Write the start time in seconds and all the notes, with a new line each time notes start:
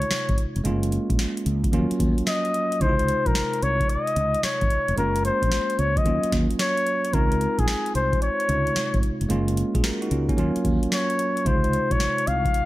Already playing: C3 G#3 D#4 F4 C#5
0.02 closed hi-hat
0.11 muted fretless electric bass stroke, snare, closed hi-hat
0.29 G#1, kick, closed hi-hat
0.38 closed hi-hat
0.56 F1, closed hi-hat
0.64 F#1 G#3 A#3 C#4 F4, closed hi-hat
0.83 closed hi-hat
0.92 closed hi-hat
1.10 A#1, kick, closed hi-hat
1.19 snare, closed hi-hat
1.37 closed hi-hat
1.46 C#2, closed hi-hat
1.64 kick, closed hi-hat
1.72 D#2 F3 A#3 C#4 F4, closed hi-hat
1.78 F#3
1.91 muted fretless electric bass stroke, closed hi-hat
2.00 D#2, kick, closed hi-hat
2.18 closed hi-hat
2.27 D#5, snare, closed hi-hat
2.45 closed hi-hat
2.54 closed hi-hat
2.72 closed hi-hat
2.80 C#2 C3 G#3 D#4 E4 C5, kick, closed hi-hat
2.89 F4
2.99 closed hi-hat
3.08 closed hi-hat
3.26 A#1 A#4, kick, closed hi-hat
3.35 snare, closed hi-hat
3.53 closed hi-hat
3.62 C2 C#5, closed hi-hat
3.80 kick, closed hi-hat
3.89 D#5, closed hi-hat
4.07 closed hi-hat
4.16 C#2, closed hi-hat
4.34 closed hi-hat
4.43 C#5, muted fretless electric bass stroke, snare, closed hi-hat
4.61 G#1, kick, closed hi-hat
4.70 closed hi-hat
4.88 F1, closed hi-hat
4.96 F#1 G#3 A#3 C#4 F4 A#4, closed hi-hat
5.16 closed hi-hat
5.25 C5, closed hi-hat
5.42 A#1, kick, closed hi-hat
5.52 snare, closed hi-hat
5.70 closed hi-hat
5.79 C#2 C#5, closed hi-hat
5.97 D#5, kick, closed hi-hat
6.04 D#2 F#3 A#3 C#4 F4, closed hi-hat
6.23 muted fretless electric bass stroke, closed hi-hat
6.32 D#2, kick, snare, closed hi-hat
6.51 closed hi-hat
6.59 C#5, snare, closed hi-hat
6.77 closed hi-hat
6.87 closed hi-hat
7.05 closed hi-hat
7.13 C#2 G#3 C4 D#4 F4 A#4, kick, closed hi-hat
7.32 closed hi-hat
7.41 closed hi-hat
7.59 A#1 G#4, kick, closed hi-hat
7.68 snare, closed hi-hat
7.86 closed hi-hat
7.95 C2 C5, closed hi-hat
8.13 kick, closed hi-hat
8.22 C#5, closed hi-hat
8.40 closed hi-hat
8.48 C#2 C3 G#3 D#4 F4, closed hi-hat
8.67 closed hi-hat
8.76 muted fretless electric bass stroke, snare, closed hi-hat
8.94 G#1, kick, closed hi-hat
9.03 closed hi-hat
9.21 F1, closed hi-hat
9.29 F#1 G#3 A#3 C#4 F4, closed hi-hat
9.48 closed hi-hat
9.57 closed hi-hat
9.75 A#1 F4 G#4, kick, closed hi-hat
9.84 F#4 A#4, snare, closed hi-hat
10.02 D#4 F#4, closed hi-hat
10.11 C#2 C#4 F4, closed hi-hat
10.29 A#3 C#4, kick, closed hi-hat
10.37 D#2 F#3 A#3 C#4 F4, closed hi-hat
10.56 muted fretless electric bass stroke, closed hi-hat
10.65 D#2, kick, closed hi-hat
10.83 closed hi-hat
10.92 C#5, snare, closed hi-hat
11.10 closed hi-hat
11.19 closed hi-hat
11.37 closed hi-hat
11.45 C#2 C3 G#3 D#4 F4 C5, kick, closed hi-hat
11.64 closed hi-hat
11.73 closed hi-hat
11.91 A#1 C#5, kick, closed hi-hat
12.00 snare, closed hi-hat
12.18 closed hi-hat
12.27 C2 F5, closed hi-hat
12.45 kick, closed hi-hat
12.54 closed hi-hat